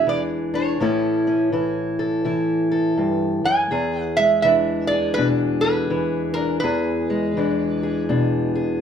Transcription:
0.00 0.80 E2 medium
0.00 0.81 G#3 medium
0.00 0.53 D4 medium
0.00 0.78 G#4 medium
0.07 0.80 E3 medium
0.07 0.21 D5 medium
0.54 0.78 D4 medium
0.54 1.97 C#5 medium
0.80 2.97 A2 medium
0.80 1.52 E3 medium
0.80 1.26 C#4 medium
0.80 1.53 E4 medium
0.80 1.98 A4 medium
1.27 3.70 C#4 medium
1.52 2.25 E3 medium
1.52 2.25 E4 medium
1.99 2.70 A4 medium
2.25 4.44 E3 medium
2.25 4.45 E4 medium
2.72 3.69 A4 medium
2.98 3.44 G2 medium
3.44 3.70 F#2 medium
3.44 4.01 G#5 medium
3.71 6.62 E2 medium
3.71 4.91 G#4 medium
4.01 4.21 F#5 medium
4.17 7.09 G#3 medium
4.17 4.41 E5 medium
4.42 5.90 E3 medium
4.42 5.18 D4 medium
4.42 4.87 E5 medium
4.87 5.63 G#4 medium
4.87 5.17 D5 medium
5.14 5.91 B2 medium
5.14 5.27 B4 medium
5.18 6.35 D4 medium
5.61 6.61 G#4 medium
5.61 6.33 B4 medium
5.90 7.36 E3 medium
6.34 6.61 D4 medium
6.34 6.59 A#4 medium
6.60 8.81 E2 medium
6.60 8.03 B4 medium
6.64 7.82 G#4 medium
7.10 8.81 G#3 medium
7.37 8.81 E3 medium
7.37 8.08 D4 soft
7.83 8.54 G#4 medium
8.09 8.81 B2 medium
8.09 8.81 D4 medium
8.55 8.81 G#4 medium

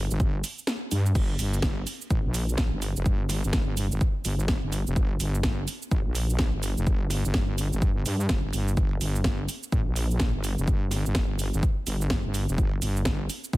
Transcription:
0.11 0.19 G1 loud
0.11 shaker medium
0.20 0.42 G1 loud
0.20 kick loud
0.20 shaker soft
0.44 open hi-hat loud
0.44 shaker medium
0.58 shaker medium
0.67 snare loud
0.67 shaker soft
0.91 1.14 G2 loud
0.91 open hi-hat medium
0.91 shaker medium
1.06 shaker soft
1.15 1.38 G1 medium
1.15 kick loud
1.15 crash medium
1.15 shaker soft
1.39 1.85 G1 medium
1.39 open hi-hat loud
1.39 shaker medium
1.54 shaker soft
1.62 kick loud
1.62 snare loud
1.62 shaker soft
1.87 open hi-hat medium
1.87 shaker medium
2.01 shaker soft
2.10 2.23 A1 loud
2.10 kick loud
2.10 shaker soft
2.25 2.70 A#1 loud
2.34 open hi-hat loud
2.34 shaker medium
2.49 shaker soft
2.58 kick loud
2.58 snare loud
2.58 shaker soft
2.73 2.94 G1 loud
2.82 open hi-hat medium
2.82 shaker medium
2.96 3.04 F1 loud
2.96 shaker soft
3.06 3.42 G1 loud
3.06 kick loud
3.06 shaker soft
3.29 snare soft
3.29 open hi-hat loud
3.29 shaker medium
3.44 3.52 G1 loud
3.44 shaker soft
3.53 3.89 G1 loud
3.53 kick loud
3.53 snare loud
3.53 shaker soft
3.77 open hi-hat loud
3.77 shaker medium
3.92 3.99 G1 loud
3.92 shaker soft
4.01 kick loud
4.01 shaker soft
4.25 4.61 G1 loud
4.25 open hi-hat loud
4.25 shaker medium
4.39 shaker soft
4.48 kick loud
4.48 snare loud
4.48 shaker soft
4.63 4.85 G1 medium
4.72 open hi-hat medium
4.72 shaker medium
4.87 4.95 F1 loud
4.87 shaker soft
4.96 5.19 G1 loud
4.96 kick loud
4.96 shaker soft
5.20 5.66 G1 loud
5.20 open hi-hat loud
5.20 shaker medium
5.35 shaker soft
5.43 kick loud
5.43 snare loud
5.43 shaker soft
5.68 open hi-hat loud
5.68 shaker medium
5.82 shaker soft
5.91 6.04 A1 loud
5.91 kick loud
5.91 shaker soft
6.06 6.51 A#1 loud
6.15 open hi-hat loud
6.15 shaker medium
6.30 shaker soft
6.39 kick loud
6.39 snare loud
6.39 shaker soft
6.54 6.75 G1 loud
6.63 open hi-hat medium
6.63 shaker medium
6.77 6.85 F1 loud
6.77 shaker soft
6.87 7.23 G1 loud
6.87 kick loud
6.87 shaker soft
7.10 snare soft
7.10 open hi-hat loud
7.10 shaker medium
7.25 7.33 G1 loud
7.25 shaker soft
7.34 7.70 G1 loud
7.34 kick loud
7.34 snare loud
7.34 shaker soft
7.58 open hi-hat loud
7.58 shaker medium
7.73 7.80 G1 loud
7.73 shaker soft
7.82 8.04 G1 loud
7.82 kick loud
7.82 shaker soft
8.06 8.28 G2 loud
8.06 open hi-hat loud
8.06 shaker medium
8.20 shaker soft
8.29 8.42 G1 loud
8.29 kick loud
8.29 snare loud
8.29 shaker soft
8.44 8.52 G1 loud
8.53 8.76 G1 loud
8.53 open hi-hat medium
8.53 shaker medium
8.68 shaker soft
8.77 9.00 G1 loud
8.77 kick loud
8.77 shaker soft
9.01 9.47 G1 medium
9.01 open hi-hat loud
9.01 shaker medium
9.16 shaker soft
9.24 kick loud
9.24 snare loud
9.24 shaker soft
9.49 open hi-hat medium
9.49 shaker medium
9.63 shaker soft
9.72 9.85 A1 loud
9.72 kick loud
9.72 shaker soft
9.87 10.32 A#1 loud
9.96 open hi-hat loud
9.96 shaker medium
10.11 shaker soft
10.20 kick loud
10.20 snare loud
10.20 shaker soft
10.35 10.56 G1 loud
10.44 open hi-hat medium
10.44 shaker medium
10.58 10.66 F1 medium
10.58 shaker soft
10.68 11.04 G1 loud
10.68 kick loud
10.68 shaker soft
10.91 snare soft
10.91 open hi-hat loud
10.91 shaker medium
11.06 11.14 G1 loud
11.06 shaker medium
11.15 11.51 G1 loud
11.15 kick loud
11.15 snare loud
11.15 shaker soft
11.39 open hi-hat medium
11.39 shaker medium
11.54 11.61 G1 loud
11.54 shaker soft
11.63 kick loud
11.63 shaker soft
11.87 12.23 G1 loud
11.87 open hi-hat loud
11.87 shaker medium
12.01 shaker soft
12.10 kick loud
12.10 snare loud
12.10 shaker soft
12.25 12.47 G1 loud
12.34 open hi-hat medium
12.34 shaker medium
12.49 12.57 F1 loud
12.49 shaker soft
12.58 12.80 G1 loud
12.58 kick loud
12.58 shaker soft
12.82 13.28 G1 loud
12.82 open hi-hat loud
12.82 shaker medium
12.97 shaker medium
13.05 kick loud
13.05 snare loud
13.05 shaker soft
13.30 open hi-hat medium
13.30 shaker medium
13.44 shaker soft
13.53 13.57 A1 medium
13.53 kick loud
13.53 shaker soft

